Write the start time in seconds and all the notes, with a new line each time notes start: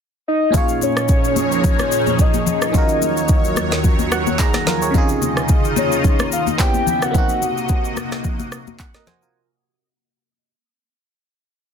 0.28 D#5
0.50 A#2 F3 C#4 D#4 G#4 C#5, kick, low conga, shaker
0.55 F4 G#4 C#5 F5
0.69 shaker
0.81 C#5, high conga, shaker
0.97 cross-stick, shaker
1.08 kick, shaker
1.24 shaker
1.36 high conga, shaker
1.52 shaker
1.64 C#5, kick, low conga, shaker
1.79 cross-stick, high conga, shaker
1.92 shaker
2.07 high conga, shaker
2.19 D#5, kick, shaker
2.34 high conga, shaker
2.46 D#5, low conga, shaker
2.62 cross-stick, shaker
2.71 D#2 D#3 F#3 C#4 F4 C#5, kick, low conga, shaker
2.76 F#4 A#4
2.89 shaker
3.02 high conga, shaker
3.17 shaker
3.28 kick, shaker
3.44 shaker
3.56 cross-stick, high conga, shaker
3.72 snare, shaker
3.84 kick, low conga, shaker
3.99 high conga, shaker
4.12 F#5, cross-stick, shaker
4.27 high conga, shaker
4.39 D#4 G#4 A#5, kick, clap, shaker
4.54 cross-stick, snare, high conga, shaker
4.67 F4 A#4, snare, low conga, shaker
4.82 G#4 C#5, shaker
4.91 C3 C#3 D#3 D#4 F4 D#5, kick, low conga, shaker
4.96 F4 G#4
5.09 shaker
5.22 high conga, shaker
5.37 cross-stick, shaker
5.49 kick, shaker
5.65 shaker
5.76 C#5, high conga, shaker
5.92 shaker
6.04 kick, low conga, shaker
6.19 cross-stick, high conga, shaker
6.32 F5, shaker
6.47 high conga, shaker
6.58 C#3 B3 C#4 E4 G4 E5 G5, kick, clap, shaker
6.74 high conga, shaker
6.87 low conga, shaker
7.02 F#5, cross-stick, shaker
7.11 C3 A#3 C4 F#4 D#5, kick, low conga, shaker
7.16 D#4 F#4
7.29 shaker
7.42 high conga, shaker
7.57 shaker
7.69 kick, shaker
7.85 shaker
7.97 cross-stick, high conga, shaker
8.12 cross-stick, snare, shaker
8.24 kick, low conga, shaker
8.39 high conga, shaker
8.52 cross-stick, shaker
8.67 high conga, shaker
8.79 F#5, kick, clap, shaker
8.94 A#4 D#5, cross-stick, snare, high conga, shaker
9.07 F#4 C5 G#5, snare, low conga, shaker
9.22 F4 A#4, shaker